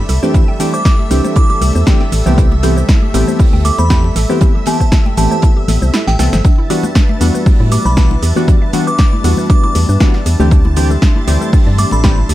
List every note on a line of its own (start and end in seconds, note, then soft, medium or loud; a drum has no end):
0.00 6.41 G3 medium
0.00 6.41 A3 medium
0.00 6.41 A4 medium
0.00 6.46 E5 medium
0.00 10.47 E5 loud
0.00 6.46 E6 medium
0.09 0.19 C2 medium
0.09 0.14 A4 loud
0.09 snare soft
0.09 closed hi-hat medium
0.09 open hi-hat loud
0.09 shaker medium
0.23 0.44 E3 medium
0.23 0.44 A3 medium
0.23 0.44 C4 medium
0.23 0.44 D4 medium
0.23 0.44 G4 loud
0.23 0.26 C5 medium
0.23 snare medium
0.23 muted conga medium
0.23 high conga medium
0.23 shaker soft
0.34 0.43 E4 medium
0.34 kick loud
0.34 closed hi-hat medium
0.34 low conga medium
0.34 shaker soft
0.48 0.51 G5 medium
0.60 0.74 E3 medium
0.60 0.74 A3 medium
0.60 0.74 C4 medium
0.60 0.74 D4 medium
0.60 0.74 G4 loud
0.60 0.65 A4 medium
0.60 closed hi-hat medium
0.60 open hi-hat loud
0.60 muted conga medium
0.60 shaker medium
0.74 0.78 C5 medium
0.74 1.11 D6 loud
0.74 shaker soft
0.85 0.91 E4 medium
0.85 kick loud
0.85 snare loud
0.85 closed hi-hat medium
0.85 muted conga medium
0.85 shaker soft
0.99 1.06 G4 medium
0.99 high conga medium
1.11 1.21 C2 loud
1.11 1.84 E3 medium
1.11 1.84 A3 medium
1.11 1.84 C4 medium
1.11 1.84 D4 medium
1.11 1.84 G4 medium
1.11 1.14 A4 loud
1.11 closed hi-hat medium
1.11 open hi-hat loud
1.11 shaker medium
1.24 1.27 C5 medium
1.24 muted conga medium
1.24 high conga medium
1.24 shaker soft
1.36 1.44 E4 loud
1.36 1.45 D6 medium
1.36 kick loud
1.36 closed hi-hat medium
1.36 shaker soft
1.50 1.53 G4 medium
1.50 1.57 D6 medium
1.50 muted conga medium
1.62 1.72 C2 loud
1.62 1.67 A4 loud
1.62 closed hi-hat medium
1.62 open hi-hat loud
1.62 high conga medium
1.62 shaker medium
1.75 1.84 E2 loud
1.75 1.78 C5 medium
1.75 shaker soft
1.86 2.01 E3 medium
1.86 2.01 A3 medium
1.86 2.01 C4 medium
1.86 2.01 D4 medium
1.86 1.95 E4 medium
1.86 2.01 G4 loud
1.86 kick loud
1.86 snare loud
1.86 closed hi-hat medium
1.86 muted conga medium
1.86 shaker soft
2.01 2.04 G5 medium
2.01 snare soft
2.12 2.22 A1 medium
2.12 2.18 A4 medium
2.12 closed hi-hat medium
2.12 open hi-hat loud
2.12 muted conga medium
2.12 shaker medium
2.26 2.84 C2 loud
2.26 2.47 E3 medium
2.26 2.47 A3 medium
2.26 2.47 B3 medium
2.26 2.47 C4 medium
2.26 2.47 G4 loud
2.26 2.31 C5 medium
2.26 snare soft
2.26 high conga medium
2.26 low conga medium
2.26 shaker soft
2.38 2.43 E4 medium
2.38 kick loud
2.38 closed hi-hat medium
2.38 shaker soft
2.51 2.59 G4 medium
2.51 muted conga medium
2.63 2.78 E3 medium
2.63 2.78 A3 medium
2.63 2.78 B3 medium
2.63 2.78 C4 medium
2.63 2.78 G4 loud
2.63 2.67 A4 loud
2.63 closed hi-hat medium
2.63 open hi-hat loud
2.63 shaker medium
2.77 2.80 C5 medium
2.77 muted conga medium
2.77 shaker soft
2.89 2.97 E4 loud
2.89 kick loud
2.89 snare loud
2.89 closed hi-hat medium
2.89 shaker soft
3.02 3.05 G4 medium
3.02 high conga medium
3.14 3.24 A1 loud
3.14 3.88 E3 medium
3.14 3.88 A3 medium
3.14 3.88 B3 medium
3.14 3.88 C4 medium
3.14 3.88 G4 loud
3.14 3.20 A4 loud
3.14 snare medium
3.14 closed hi-hat medium
3.14 open hi-hat loud
3.14 muted conga medium
3.14 shaker medium
3.28 3.31 C5 medium
3.28 high conga medium
3.28 shaker soft
3.39 3.48 E4 medium
3.39 kick loud
3.39 open hi-hat medium
3.39 muted conga soft
3.39 shaker soft
3.53 3.71 D2 loud
3.53 3.56 G5 medium
3.65 3.70 A4 medium
3.65 3.76 D6 medium
3.65 closed hi-hat medium
3.65 open hi-hat loud
3.65 high conga medium
3.65 shaker medium
3.78 4.11 E2 medium
3.78 3.83 C5 medium
3.78 3.86 B5 medium
3.78 muted conga medium
3.78 shaker soft
3.90 4.05 E3 medium
3.90 4.05 A3 medium
3.90 4.05 B3 medium
3.90 4.05 C4 medium
3.90 3.96 E4 medium
3.90 4.05 G4 loud
3.90 3.99 B5 medium
3.90 kick loud
3.90 snare loud
3.90 closed hi-hat medium
3.90 shaker soft
4.04 4.11 G4 medium
4.04 muted conga medium
4.16 4.26 A1 loud
4.16 4.19 A4 loud
4.16 snare loud
4.16 closed hi-hat medium
4.16 open hi-hat loud
4.16 shaker medium
4.29 4.51 E3 medium
4.29 4.51 A3 medium
4.29 4.51 B3 medium
4.29 4.51 C4 medium
4.29 4.51 G4 loud
4.29 4.32 C5 medium
4.29 high conga medium
4.29 shaker soft
4.41 4.49 E4 loud
4.41 kick loud
4.41 closed hi-hat medium
4.41 muted conga medium
4.41 low conga medium
4.41 shaker soft
4.55 4.58 G4 medium
4.66 4.81 E3 medium
4.66 4.81 A3 medium
4.66 4.81 B3 medium
4.66 4.81 C4 medium
4.66 4.81 G4 loud
4.66 4.72 A4 loud
4.66 4.86 A5 medium
4.66 closed hi-hat medium
4.66 open hi-hat loud
4.66 muted conga medium
4.66 shaker medium
4.80 4.83 C5 medium
4.80 kick medium
4.80 shaker soft
4.92 5.00 E4 medium
4.92 kick loud
4.92 snare loud
4.92 closed hi-hat medium
4.92 shaker soft
5.05 5.09 G5 medium
5.05 muted conga medium
5.05 high conga medium
5.17 5.28 A1 loud
5.17 5.91 E3 medium
5.17 5.91 A3 medium
5.17 5.91 B3 medium
5.17 5.91 C4 medium
5.17 5.91 G4 loud
5.17 5.23 A4 medium
5.17 5.26 A5 medium
5.17 closed hi-hat medium
5.17 open hi-hat loud
5.17 shaker medium
5.31 5.36 C5 medium
5.31 5.39 A5 medium
5.31 muted conga medium
5.31 high conga medium
5.31 shaker soft
5.42 5.48 E4 medium
5.42 kick loud
5.42 closed hi-hat medium
5.42 shaker soft
5.57 5.64 G4 medium
5.68 5.78 A1 loud
5.68 5.72 A4 loud
5.68 snare loud
5.68 closed hi-hat medium
5.68 open hi-hat loud
5.68 muted conga medium
5.68 high conga medium
5.68 shaker medium
5.82 5.91 C2 loud
5.82 5.85 C5 medium
5.82 shaker soft
5.94 6.02 E4 loud
5.94 snare loud
5.94 closed hi-hat medium
5.94 muted conga medium
5.94 shaker soft
6.07 6.16 A1 loud
6.07 6.10 G4 medium
6.07 6.15 G5 medium
6.07 snare medium
6.07 snare loud
6.07 closed hi-hat medium
6.19 6.29 C2 loud
6.19 6.34 E3 medium
6.19 6.34 A3 medium
6.19 6.34 B3 medium
6.19 6.34 C4 medium
6.19 6.34 A4 medium
6.19 6.25 A4 loud
6.19 6.28 G5 medium
6.19 snare medium
6.19 open hi-hat loud
6.19 shaker medium
6.33 6.41 G1 medium
6.33 6.36 C5 medium
6.33 snare medium
6.33 closed hi-hat medium
6.33 muted conga medium
6.33 high conga medium
6.33 low conga medium
6.33 shaker soft
6.44 12.34 G3 medium
6.44 6.53 D4 loud
6.44 12.34 D4 medium
6.44 10.47 B4 medium
6.44 12.34 A5 medium
6.44 12.34 A6 medium
6.44 kick loud
6.44 closed hi-hat medium
6.44 muted conga medium
6.44 shaker soft
6.58 6.61 E4 medium
6.70 6.84 E3 medium
6.70 6.84 G3 medium
6.70 6.84 B3 medium
6.70 6.84 D4 medium
6.70 6.84 F#4 loud
6.70 6.75 G4 loud
6.70 closed hi-hat medium
6.70 open hi-hat loud
6.70 shaker medium
6.83 6.87 B4 medium
6.83 muted conga medium
6.83 shaker soft
6.95 7.04 D4 medium
6.95 kick loud
6.95 snare loud
6.95 closed hi-hat medium
6.95 shaker soft
7.09 7.12 E5 medium
7.09 muted conga medium
7.09 high conga medium
7.21 7.31 E2 loud
7.21 7.94 E3 medium
7.21 7.94 G3 medium
7.21 7.94 B3 medium
7.21 7.94 D4 medium
7.21 7.94 F#4 medium
7.21 7.26 G4 medium
7.21 snare medium
7.21 closed hi-hat medium
7.21 open hi-hat loud
7.21 shaker medium
7.34 7.39 B4 medium
7.34 high conga medium
7.34 shaker soft
7.46 7.52 D4 medium
7.46 kick loud
7.46 open hi-hat medium
7.46 muted conga medium
7.46 shaker soft
7.60 7.78 A2 loud
7.60 7.67 E4 medium
7.72 7.75 G4 loud
7.72 7.83 D6 medium
7.72 closed hi-hat medium
7.72 open hi-hat loud
7.72 muted conga medium
7.72 high conga medium
7.72 shaker medium
7.85 8.18 B1 medium
7.85 7.88 B4 medium
7.85 7.93 B5 medium
7.85 shaker soft
7.97 8.12 E3 medium
7.97 8.12 G3 medium
7.97 8.12 B3 medium
7.97 8.12 D4 medium
7.97 8.05 D4 loud
7.97 8.12 F#4 loud
7.97 8.06 B5 medium
7.97 kick loud
7.97 snare loud
7.97 closed hi-hat medium
7.97 shaker soft
8.11 8.14 E4 medium
8.11 muted conga medium
8.22 8.33 E2 medium
8.22 8.28 G4 loud
8.22 snare soft
8.22 closed hi-hat medium
8.22 open hi-hat loud
8.22 shaker medium
8.35 8.58 E3 medium
8.35 8.58 G3 medium
8.35 8.58 B3 medium
8.35 8.58 D4 medium
8.35 8.58 F#4 loud
8.35 8.39 B4 medium
8.35 snare soft
8.35 muted conga medium
8.35 high conga medium
8.35 shaker soft
8.48 8.56 D4 medium
8.48 kick loud
8.48 closed hi-hat medium
8.48 low conga medium
8.48 shaker soft
8.62 8.65 E5 medium
8.73 8.88 E3 medium
8.73 8.88 G3 medium
8.73 8.88 B3 medium
8.73 8.88 D4 medium
8.73 8.88 F#4 loud
8.73 8.79 G4 medium
8.73 closed hi-hat medium
8.73 open hi-hat loud
8.73 muted conga medium
8.73 shaker medium
8.87 8.92 B4 medium
8.87 9.24 D6 medium
8.87 shaker soft
8.98 9.04 D4 medium
8.98 kick loud
8.98 snare loud
8.98 closed hi-hat medium
8.98 muted conga medium
8.98 shaker soft
9.13 9.20 E4 medium
9.13 high conga medium
9.24 9.34 E2 loud
9.24 9.98 E3 medium
9.24 9.98 G3 medium
9.24 9.98 B3 medium
9.24 9.98 D4 medium
9.24 9.98 F#4 loud
9.24 9.28 G4 loud
9.24 closed hi-hat medium
9.24 open hi-hat loud
9.24 shaker medium
9.37 9.41 B4 medium
9.37 muted conga medium
9.37 high conga medium
9.37 shaker soft
9.50 9.58 D4 loud
9.50 9.59 D6 medium
9.50 kick loud
9.50 closed hi-hat medium
9.50 shaker soft
9.63 9.66 E4 medium
9.63 9.71 D6 medium
9.63 muted conga soft
9.75 9.85 E2 loud
9.75 9.81 G4 loud
9.75 closed hi-hat medium
9.75 open hi-hat loud
9.75 high conga medium
9.75 shaker medium
9.89 9.97 G2 loud
9.89 9.92 B4 medium
9.89 shaker soft
10.00 10.15 E3 medium
10.00 10.15 G3 medium
10.00 10.15 B3 medium
10.00 10.15 D4 medium
10.00 10.09 D4 medium
10.00 10.15 F#4 loud
10.00 kick loud
10.00 snare loud
10.00 closed hi-hat medium
10.00 muted conga medium
10.00 shaker soft
10.14 10.17 E5 medium
10.14 snare soft
10.26 10.36 E2 medium
10.26 10.31 G4 medium
10.26 closed hi-hat medium
10.26 open hi-hat loud
10.26 muted conga medium
10.26 shaker medium
10.40 10.97 D2 loud
10.40 10.61 E3 medium
10.40 10.61 A3 medium
10.40 10.61 C4 medium
10.40 10.61 D4 medium
10.40 10.61 G4 loud
10.40 10.44 B4 medium
10.40 snare soft
10.40 high conga medium
10.40 low conga medium
10.40 shaker soft
10.51 10.57 D4 medium
10.51 12.34 E5 loud
10.51 12.34 C6 medium
10.51 kick loud
10.51 closed hi-hat loud
10.51 shaker soft
10.65 10.72 E4 medium
10.65 muted conga medium
10.76 10.91 E3 medium
10.76 10.91 A3 medium
10.76 10.91 C4 medium
10.76 10.91 D4 medium
10.76 10.91 G4 loud
10.76 10.80 G4 loud
10.76 closed hi-hat medium
10.76 open hi-hat loud
10.76 shaker medium
10.91 10.93 A4 medium
10.91 muted conga medium
10.91 shaker soft
11.02 11.10 D4 loud
11.02 kick loud
11.02 snare loud
11.02 closed hi-hat medium
11.02 shaker soft
11.16 11.19 E4 medium
11.16 high conga medium
11.27 11.38 D2 loud
11.27 12.01 E3 medium
11.27 12.01 A3 medium
11.27 12.01 C4 medium
11.27 12.01 D4 medium
11.27 12.01 G4 loud
11.27 11.33 G4 loud
11.27 snare medium
11.27 closed hi-hat medium
11.27 open hi-hat loud
11.27 muted conga medium
11.27 shaker medium
11.41 11.44 A4 medium
11.41 high conga medium
11.41 shaker soft
11.53 11.61 D4 medium
11.53 kick loud
11.53 open hi-hat medium
11.53 muted conga soft
11.53 shaker soft
11.67 11.85 G2 loud
11.67 11.70 D5 medium
11.78 11.84 G4 medium
11.78 11.89 D6 medium
11.78 closed hi-hat medium
11.78 open hi-hat loud
11.78 high conga medium
11.78 shaker medium
11.91 12.24 A1 loud
11.91 11.97 A4 medium
11.91 12.00 B5 medium
11.91 muted conga medium
11.91 shaker soft
12.04 12.18 E3 medium
12.04 12.18 A3 medium
12.04 12.18 C4 medium
12.04 12.18 D4 medium
12.04 12.09 D4 medium
12.04 12.18 G4 loud
12.04 12.13 B5 medium
12.04 kick loud
12.04 snare loud
12.04 closed hi-hat loud
12.04 shaker soft
12.17 12.25 E4 medium
12.17 muted conga medium
12.29 12.34 D2 medium
12.29 12.33 G4 loud
12.29 snare soft
12.29 closed hi-hat medium
12.29 open hi-hat loud
12.29 shaker medium